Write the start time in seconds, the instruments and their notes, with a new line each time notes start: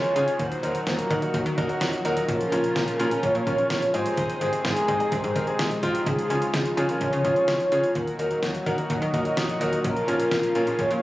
Already playing: analog synth pad C#3 F3 G#3 D#4 F4, qanun G#3 C#4 G#4, analog polysynth C#5, downlifter
0.04 closed hi-hat
0.16 fm bass C#3, grand piano C#4 F4 G#4, qanun C#4, closed hi-hat
0.28 closed hi-hat
0.39 fm bass D#2, analog synth pad A#2 D#3 F#3 F#4, analog polysynth C5, qanun F#5, kick, closed hi-hat
0.52 closed hi-hat
0.63 fm bass D#2, qanun F#3, grand piano D#4 F#4 A#4, closed hi-hat
0.75 closed hi-hat
0.87 fm bass D#2, qanun A#3, analog polysynth A#4, snare, closed hi-hat
0.99 closed hi-hat
1.10 fm bass D#3, grand piano D#4 F#4 A#4, qanun F#5, kick, closed hi-hat
1.22 grand piano D#4 F#4 A#4, closed hi-hat
1.34 fm bass D#2, qanun F#3, kick, closed hi-hat
1.46 fm bass D#3, closed hi-hat
1.58 fm bass D#2, qanun A#3, grand piano D#4 F#4 A#4 D#5, kick, closed hi-hat
1.69 grand piano D#4 F#4 A#4, closed hi-hat
1.81 fm bass F2, grand piano F#5, qanun F#5, snare, closed hi-hat
1.93 closed hi-hat
2.05 fm bass D#2, qanun F#3, grand piano D#4 F#4 A#4 A#5, closed hi-hat
2.17 closed hi-hat
2.28 fm bass A#1, analog synth pad C#3 F3 C#4 F4, qanun F3, analog polysynth A#4, kick, closed hi-hat
2.41 closed hi-hat
2.52 fm bass A#1, qanun A#3, grand piano C#4 F4 A#4, closed hi-hat
2.64 closed hi-hat
2.76 fm bass A#1, qanun F5, snare, closed hi-hat
2.88 closed hi-hat
2.99 fm bass A#2, qanun F3, grand piano C#4 F4 A#4, closed hi-hat
3.11 grand piano C#4 F4 A#4, closed hi-hat
3.23 fm bass A#1, qanun A#3, analog polysynth C#5, kick, closed hi-hat
3.35 fm bass A#2, closed hi-hat
3.47 fm bass A#1, grand piano C#4 F4 A#4, qanun F5, kick, closed hi-hat
3.58 grand piano C#4 F4 A#4, closed hi-hat
3.70 fm bass A#1, qanun F3, snare, closed hi-hat
3.82 closed hi-hat
3.94 fm bass G#2, analog synth pad C3 D#3 G#3 D#4 G#4, qanun G#3, grand piano C4 D#4 G#4, analog polysynth C5, closed hi-hat
4.06 closed hi-hat
4.17 fm bass G#1, qanun D#5, kick, closed hi-hat
4.30 closed hi-hat
4.41 fm bass G#1, qanun D#3, grand piano C4 D#4 G#4, closed hi-hat
4.53 closed hi-hat
4.65 fm bass G#1, qanun G#3, analog polysynth G#4, snare, closed hi-hat
4.77 closed hi-hat
4.88 fm bass G#2, grand piano C4 D#4 G#4, qanun D#5, kick, closed hi-hat
5.00 grand piano C4 D#4 G#4, closed hi-hat
5.12 fm bass G#1, qanun D#3, analog polysynth C5, kick, closed hi-hat
5.24 fm bass G#2, closed hi-hat
5.35 fm bass G#1, qanun G#3, grand piano C4 D#4 A#4, kick, closed hi-hat
5.47 grand piano C4 D#4 G#4, closed hi-hat
5.59 fm bass A#1, qanun D#5, snare, closed hi-hat
5.71 closed hi-hat
5.83 fm bass G#1, qanun D#3, grand piano C4 D#4 F4, kick, closed hi-hat
5.95 closed hi-hat
6.06 fm bass C#2, analog synth pad C#3 F3 F4, qanun F3, analog polysynth G#4, kick, closed hi-hat
6.19 closed hi-hat
6.30 fm bass C#2, qanun G#3, grand piano C#4 F4 G#4, closed hi-hat
6.42 closed hi-hat
6.54 fm bass C#2, qanun F4, snare, closed hi-hat
6.65 closed hi-hat
6.77 fm bass C#3, qanun F3, grand piano C#4 F4 G#4, closed hi-hat
6.89 grand piano C#4 F4 A#4, closed hi-hat
7.01 fm bass C#2, qanun G#3, analog polysynth C#5, kick, closed hi-hat
7.13 fm bass C#3, closed hi-hat
7.25 fm bass C#2, grand piano C#4 F4 G#4, qanun F4, kick, closed hi-hat
7.36 grand piano C#4 F4 G#4, closed hi-hat
7.48 fm bass C#2, qanun F3, snare, closed hi-hat
7.60 closed hi-hat
7.72 fm bass C#3, qanun G#3, grand piano C#4 F4 G#4, closed hi-hat
7.84 closed hi-hat
7.95 fm bass D#2, analog synth pad A#2 D#3 F#3 F#4, analog polysynth A#4, qanun F#5, kick, closed hi-hat
8.08 closed hi-hat
8.19 fm bass D#2, qanun F#3, grand piano D#4 F#4 A#4, closed hi-hat
8.31 closed hi-hat
8.43 fm bass D#2, qanun A#3, snare, closed hi-hat
8.54 closed hi-hat
8.66 fm bass D#3, grand piano D#4 F#4 A#4, qanun F#5, kick, closed hi-hat
8.78 grand piano D#4 F#4 A#4, closed hi-hat
8.90 fm bass D#2, qanun F#3, analog polysynth D#5, kick, closed hi-hat
9.02 fm bass D#3, closed hi-hat
9.14 fm bass D#2, qanun A#3, grand piano D#4 F#4 A#4, kick, closed hi-hat
9.25 grand piano D#4 F#4 A#4, closed hi-hat
9.37 fm bass F2, qanun F#5, snare, closed hi-hat
9.49 closed hi-hat
9.61 fm bass D#2, qanun F#3, grand piano D#4 F#4 A#4, closed hi-hat
9.73 closed hi-hat
9.84 fm bass A#1, analog synth pad C#3 F3 C#4 F4, qanun F3, analog polysynth A#4, kick, closed hi-hat
9.97 closed hi-hat
10.08 fm bass A#1, qanun A#3, grand piano C#4 F4 A#4, closed hi-hat
10.20 closed hi-hat
10.31 fm bass A#1, qanun F5, snare, closed hi-hat
10.43 closed hi-hat
10.55 fm bass A#2, qanun F3, grand piano C#4 F4 A#4, closed hi-hat
10.67 grand piano C#4 F4 G#4, closed hi-hat
10.79 fm bass A#1, qanun A#3, analog polysynth C#5, kick, closed hi-hat
10.91 fm bass A#2, closed hi-hat